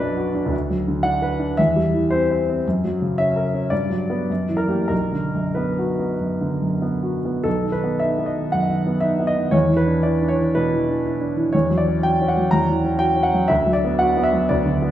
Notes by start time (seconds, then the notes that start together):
Already playing: B1 F#2 F#3 B4 D5
0.00 D4
0.17 F#4
0.35 D4
0.46 D2
0.70 F#3
0.88 D3
1.03 D4 F#5
1.22 B4
1.40 D4
1.57 E2 E5
1.76 G3
1.94 E3
2.10 C4 C5
2.31 C5
2.49 C4
2.67 F#2
2.85 F#3
3.02 C#3
3.18 C#4 E5
3.36 A#4
3.54 C#4
3.70 G2 D5
3.90 F#3
4.10 B3 B4
4.30 F#2
4.49 E3
4.57 A#4
4.68 A#3 G4
4.88 B1 A#4
5.13 D3
5.35 F#2
5.55 B3 B4
5.79 F#4
6.00 B3
6.20 F#2
6.41 D3
6.62 F#2
6.82 B3
7.03 F#4
7.25 B3
7.44 B1 A4
7.65 D#3
7.72 B4
7.84 B3
8.00 D#4 E5
8.19 B3
8.26 D#5
8.37 D#3
8.52 F#2 F#5
8.70 D#3
8.87 B3
9.00 D#4 E5
9.20 B3
9.27 D#5
9.37 D#3
9.51 E2 C#5
9.69 E3
9.77 B4
9.88 D4
10.03 E4 D5
10.22 D4
10.28 C#5
10.39 E3
10.55 B2 B4
10.74 E3
10.89 D4
11.06 E4
11.21 D4
11.37 E3
11.53 E2 C#5
11.70 F#3
11.78 D5
11.87 C#4
12.03 F#4 G5
12.22 C#4
12.28 F#5
12.37 F#3
12.51 E2 A#5
12.70 E3
12.84 C#4
12.99 F#4 G5
13.16 C#4
13.23 F#5
13.34 F#3
13.48 D2 E5
13.66 F#3
13.73 D5
13.84 B3
13.99 F#4 F#5
14.17 B3
14.23 E5
14.33 F#3
14.49 D2 D5
14.66 D3
14.82 B3